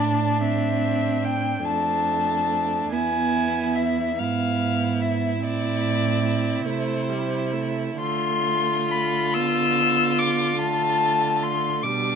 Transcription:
Already playing: cello A2, viola D4, violin D4
0.00 violin A5
0.41 viola C4, violin E5
1.24 violin G5
1.65 cello F2, viola A3, violin D4 A5
2.92 cello E2, viola B3, violin E4 G#5
3.75 violin E5
4.18 cello G#2, viola B3, violin E4 F5
5.01 violin E5
5.42 cello A2, viola C4, violin D5
6.65 cello C3, viola A3, violin C5
7.09 viola G3
7.52 viola A3
7.98 cello D3, viola A3, violin F4 C6
8.91 violin B5
9.34 viola B3, violin E6
10.18 violin D6
10.59 viola A3, violin A5
11.43 violin C6
11.83 cello B2, viola G3, violin D4 D6

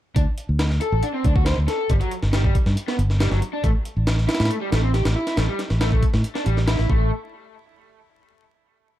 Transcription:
0.16 fingered electric bass D2, overdriven electric guitar D4, kick, closed hi-hat
0.38 closed hi-hat
0.49 fingered electric bass D2
0.59 snare, closed hi-hat
0.70 snare
0.81 overdriven electric guitar A4, closed hi-hat
0.92 fingered electric bass A1
1.03 overdriven electric guitar D4, closed hi-hat
1.14 overdriven electric guitar C4
1.24 fingered electric bass D2, overdriven electric guitar D4, kick, closed hi-hat
1.36 overdriven electric guitar F#4, kick
1.46 overdriven electric guitar C5, snare, closed hi-hat
1.57 fingered electric bass D2
1.68 overdriven electric guitar A4, snare, closed hi-hat
1.90 fingered electric bass G1, overdriven electric guitar G3, kick, closed hi-hat
2.01 overdriven electric guitar F#3, closed hi-hat
2.11 closed hi-hat
2.23 fingered electric bass G1, snare
2.33 overdriven electric guitar G3, snare, closed hi-hat
2.44 overdriven electric guitar G3, kick
2.55 kick, closed hi-hat
2.66 fingered electric bass G2, snare
2.77 closed hi-hat
2.88 overdriven electric guitar B3, snare
2.98 fingered electric bass G1, closed hi-hat
3.10 snare
3.20 overdriven electric guitar G3, snare, closed hi-hat
3.31 fingered electric bass G1, overdriven electric guitar F#3, snare
3.42 closed hi-hat
3.53 overdriven electric guitar D4
3.63 fingered electric bass A1, overdriven electric guitar A3, kick, closed hi-hat
3.85 closed hi-hat
3.96 fingered electric bass A1
4.07 snare, closed hi-hat
4.18 snare
4.29 overdriven electric guitar E4, snare, closed hi-hat
4.35 snare, closed hi-hat
4.40 fingered electric bass A2, snare, closed hi-hat
4.45 snare, closed hi-hat
4.50 overdriven electric guitar A3, closed hi-hat
4.61 overdriven electric guitar G3
4.72 fingered electric bass A1, overdriven electric guitar A3, snare, closed hi-hat
4.83 overdriven electric guitar C4
4.94 overdriven electric guitar G4, snare, closed hi-hat
5.05 fingered electric bass A1, snare, closed hi-hat
5.16 overdriven electric guitar E4
5.27 snare, closed hi-hat
5.37 fingered electric bass A1, overdriven electric guitar A3, snare, closed hi-hat
5.48 overdriven electric guitar G3
5.59 snare, closed hi-hat
5.70 fingered electric bass A1, snare
5.81 overdriven electric guitar A3, snare, closed hi-hat
5.92 overdriven electric guitar A3, kick
6.03 kick, closed hi-hat
6.14 fingered electric bass A2, snare
6.24 closed hi-hat
6.35 overdriven electric guitar D4, snare
6.46 fingered electric bass A1, overdriven electric guitar G3, closed hi-hat
6.57 snare
6.68 overdriven electric guitar E4, snare, closed hi-hat
6.79 fingered electric bass A1, overdriven electric guitar E4, snare
6.90 fingered electric bass A1, overdriven electric guitar A3, kick

